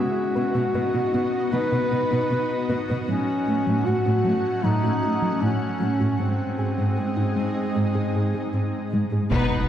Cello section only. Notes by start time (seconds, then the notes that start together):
0.36 B2
0.56 B2
0.75 B2
0.94 B2
1.14 B2
1.53 B2
1.72 B2
1.92 B2
2.11 B2
2.31 B2
2.70 B2
2.90 B2
3.09 A2
3.48 A2
3.67 A2
3.86 A2
4.06 A2
4.26 A2
4.65 A2
4.84 A2
5.03 A2
5.23 A2
5.42 A2
5.81 A2
6.01 A2
6.19 G#2
6.59 G#2
6.79 G#2
6.98 G#2
7.17 G#2
7.37 G#2
7.76 G#2
7.95 G#2
8.15 G#2
8.34 G#2
8.54 G#2
8.92 G#2
9.12 G#2
9.31 B2